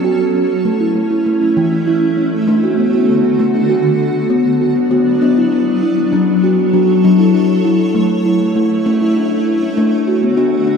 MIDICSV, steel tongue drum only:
0, 0, Header, 1, 2, 480
1, 0, Start_track
1, 0, Key_signature, 2, "minor"
1, 0, Tempo, 607903
1, 515, Time_signature, 6, 3, 24, 8
1, 8506, End_track
2, 0, Start_track
2, 0, Title_t, "Steel tongue drum"
2, 0, Program_c, 0, 114
2, 35, Note_on_c, 0, 66, 74
2, 272, Note_on_c, 0, 61, 66
2, 275, Note_off_c, 0, 66, 0
2, 514, Note_off_c, 0, 61, 0
2, 515, Note_on_c, 0, 57, 81
2, 635, Note_off_c, 0, 57, 0
2, 635, Note_on_c, 0, 64, 67
2, 755, Note_off_c, 0, 64, 0
2, 755, Note_on_c, 0, 57, 66
2, 874, Note_on_c, 0, 64, 67
2, 876, Note_off_c, 0, 57, 0
2, 995, Note_off_c, 0, 64, 0
2, 997, Note_on_c, 0, 57, 72
2, 1116, Note_on_c, 0, 64, 58
2, 1117, Note_off_c, 0, 57, 0
2, 1238, Note_on_c, 0, 52, 88
2, 1356, Note_off_c, 0, 64, 0
2, 1359, Note_on_c, 0, 61, 62
2, 1478, Note_off_c, 0, 61, 0
2, 1479, Note_on_c, 0, 64, 73
2, 1715, Note_on_c, 0, 61, 67
2, 1718, Note_off_c, 0, 64, 0
2, 1834, Note_off_c, 0, 52, 0
2, 1954, Note_on_c, 0, 57, 82
2, 1956, Note_off_c, 0, 61, 0
2, 1960, Note_on_c, 0, 62, 73
2, 2076, Note_off_c, 0, 57, 0
2, 2080, Note_on_c, 0, 66, 61
2, 2194, Note_on_c, 0, 59, 69
2, 2199, Note_off_c, 0, 66, 0
2, 2314, Note_on_c, 0, 66, 67
2, 2316, Note_off_c, 0, 59, 0
2, 2436, Note_off_c, 0, 66, 0
2, 2437, Note_on_c, 0, 59, 62
2, 2556, Note_off_c, 0, 62, 0
2, 2556, Note_on_c, 0, 66, 55
2, 2558, Note_off_c, 0, 59, 0
2, 2680, Note_on_c, 0, 57, 84
2, 2797, Note_off_c, 0, 66, 0
2, 2798, Note_on_c, 0, 62, 61
2, 2918, Note_off_c, 0, 62, 0
2, 2918, Note_on_c, 0, 66, 75
2, 3158, Note_on_c, 0, 62, 61
2, 3159, Note_off_c, 0, 66, 0
2, 3276, Note_off_c, 0, 57, 0
2, 3394, Note_on_c, 0, 59, 84
2, 3399, Note_off_c, 0, 62, 0
2, 3595, Note_off_c, 0, 59, 0
2, 3640, Note_on_c, 0, 66, 61
2, 3754, Note_on_c, 0, 59, 68
2, 3759, Note_off_c, 0, 66, 0
2, 3865, Note_off_c, 0, 59, 0
2, 3875, Note_on_c, 0, 59, 83
2, 3878, Note_on_c, 0, 66, 77
2, 4075, Note_off_c, 0, 59, 0
2, 4118, Note_off_c, 0, 66, 0
2, 4119, Note_on_c, 0, 59, 97
2, 4123, Note_on_c, 0, 62, 85
2, 4241, Note_off_c, 0, 62, 0
2, 4241, Note_on_c, 0, 64, 63
2, 4360, Note_off_c, 0, 64, 0
2, 4360, Note_on_c, 0, 62, 82
2, 4600, Note_off_c, 0, 62, 0
2, 4600, Note_on_c, 0, 64, 74
2, 4715, Note_off_c, 0, 59, 0
2, 4720, Note_off_c, 0, 64, 0
2, 4722, Note_on_c, 0, 62, 71
2, 4836, Note_on_c, 0, 61, 82
2, 4837, Note_on_c, 0, 54, 86
2, 4841, Note_off_c, 0, 62, 0
2, 5036, Note_off_c, 0, 54, 0
2, 5077, Note_off_c, 0, 61, 0
2, 5081, Note_on_c, 0, 66, 67
2, 5200, Note_off_c, 0, 66, 0
2, 5203, Note_on_c, 0, 61, 63
2, 5318, Note_on_c, 0, 54, 86
2, 5320, Note_on_c, 0, 66, 74
2, 5321, Note_off_c, 0, 61, 0
2, 5517, Note_off_c, 0, 54, 0
2, 5559, Note_off_c, 0, 66, 0
2, 5562, Note_on_c, 0, 62, 83
2, 5563, Note_on_c, 0, 54, 96
2, 5673, Note_on_c, 0, 64, 68
2, 5680, Note_off_c, 0, 62, 0
2, 5796, Note_off_c, 0, 64, 0
2, 5796, Note_on_c, 0, 62, 78
2, 6037, Note_off_c, 0, 62, 0
2, 6038, Note_on_c, 0, 64, 73
2, 6155, Note_on_c, 0, 62, 65
2, 6157, Note_off_c, 0, 54, 0
2, 6158, Note_off_c, 0, 64, 0
2, 6275, Note_on_c, 0, 57, 93
2, 6276, Note_off_c, 0, 62, 0
2, 6515, Note_on_c, 0, 64, 76
2, 6516, Note_off_c, 0, 57, 0
2, 6636, Note_off_c, 0, 64, 0
2, 6637, Note_on_c, 0, 57, 64
2, 6747, Note_off_c, 0, 57, 0
2, 6756, Note_on_c, 0, 64, 68
2, 6757, Note_on_c, 0, 57, 89
2, 6955, Note_off_c, 0, 57, 0
2, 6995, Note_on_c, 0, 57, 94
2, 6996, Note_off_c, 0, 64, 0
2, 6997, Note_on_c, 0, 61, 84
2, 7116, Note_off_c, 0, 61, 0
2, 7121, Note_on_c, 0, 64, 72
2, 7238, Note_off_c, 0, 64, 0
2, 7238, Note_on_c, 0, 62, 75
2, 7476, Note_off_c, 0, 62, 0
2, 7479, Note_on_c, 0, 64, 65
2, 7590, Note_off_c, 0, 57, 0
2, 7596, Note_off_c, 0, 64, 0
2, 7599, Note_on_c, 0, 61, 69
2, 7714, Note_on_c, 0, 62, 89
2, 7716, Note_off_c, 0, 61, 0
2, 7720, Note_on_c, 0, 57, 88
2, 7912, Note_off_c, 0, 62, 0
2, 7954, Note_on_c, 0, 66, 69
2, 7956, Note_off_c, 0, 57, 0
2, 8073, Note_off_c, 0, 66, 0
2, 8075, Note_on_c, 0, 59, 74
2, 8188, Note_on_c, 0, 66, 73
2, 8191, Note_on_c, 0, 62, 93
2, 8194, Note_off_c, 0, 59, 0
2, 8390, Note_off_c, 0, 62, 0
2, 8427, Note_on_c, 0, 62, 88
2, 8430, Note_off_c, 0, 66, 0
2, 8506, Note_off_c, 0, 62, 0
2, 8506, End_track
0, 0, End_of_file